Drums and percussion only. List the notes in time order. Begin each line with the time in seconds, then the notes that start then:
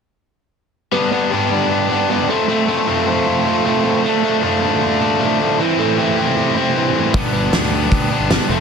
7.14 kick, open hi-hat
7.53 snare, open hi-hat
7.63 snare
7.92 kick, open hi-hat
8.30 snare, open hi-hat